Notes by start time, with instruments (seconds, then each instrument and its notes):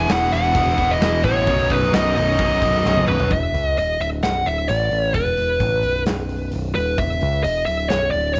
Already playing: lead electric guitar G#5
0.08 picked electric bass E1, overdriven electric guitar E2 B2 E3 B3 E4, snare, open hi-hat
0.12 lead electric guitar F#5
0.31 picked electric bass E1, overdriven electric guitar E3 B3 E4, lead electric guitar F#5, open hi-hat
0.54 picked electric bass E1, overdriven electric guitar B2 E3 B3 E4, kick, open hi-hat
0.77 picked electric bass E1, overdriven electric guitar E2 B2 E3 B3 E4, kick, open hi-hat
0.91 lead electric guitar D#5
1.00 picked electric bass E1, overdriven electric guitar B2 E3 B3 E4, snare, open hi-hat
1.23 picked electric bass A1, overdriven electric guitar E3 B3 E4, lead electric guitar C#5, kick, open hi-hat
1.47 picked electric bass B0, overdriven electric guitar B1 F#2 B2 F#3 D#4, kick, open hi-hat
1.70 picked electric bass B0, overdriven electric guitar B2 F#3 D#4, lead electric guitar B4, kick, open hi-hat
1.93 picked electric bass B0, overdriven electric guitar B1 F#2 B2 F#3 D#4, lead electric guitar D#5, snare, open hi-hat
2.15 picked electric bass B0, overdriven electric guitar F#3 D#4, lead electric guitar D#5, open hi-hat
2.19 overdriven electric guitar B2
2.38 picked electric bass B0, overdriven electric guitar F#2 B2 F#3 D#4, kick, open hi-hat
2.61 picked electric bass B0, overdriven electric guitar B1 F#2 B2 F#3 D#4, kick, open hi-hat
2.85 picked electric bass B0, overdriven electric guitar F#2 B2 F#3 D#4, snare
2.97 high tom
3.07 picked electric bass B0, overdriven electric guitar B2 F#3 D#4, lead electric guitar B4, mid tom
3.20 floor tom
3.31 picked electric bass E1, lead electric guitar E5, kick, open hi-hat
3.54 picked electric bass C#2, open hi-hat
3.66 lead electric guitar D#5
3.77 picked electric bass D#1, lead electric guitar D#5, open hi-hat
4.00 picked electric bass D1, lead electric guitar E5, open hi-hat
4.23 picked electric bass B0, lead electric guitar F#5, snare, open hi-hat
4.46 picked electric bass D1, lead electric guitar E5, open hi-hat
4.68 picked electric bass A1, lead electric guitar D5, open hi-hat
4.91 picked electric bass A1, open hi-hat
5.14 picked electric bass E1, lead electric guitar B4, kick, open hi-hat
5.37 picked electric bass E1, open hi-hat
5.60 picked electric bass A1, kick, open hi-hat
5.83 picked electric bass B0, open hi-hat
6.06 picked electric bass B0, snare, open hi-hat
6.29 open hi-hat
6.52 picked electric bass B0, open hi-hat
6.75 picked electric bass D#1, lead electric guitar B4, open hi-hat
6.98 picked electric bass E1, lead electric guitar E5, kick, open hi-hat
7.21 picked electric bass C#2, open hi-hat
7.44 picked electric bass E1, lead electric guitar D#5, open hi-hat
7.66 picked electric bass D1, lead electric guitar E5, open hi-hat
7.89 picked electric bass B0, lead electric guitar C#5, snare, open hi-hat
8.11 picked electric bass D1, lead electric guitar D5, open hi-hat
8.34 lead electric guitar D5, open hi-hat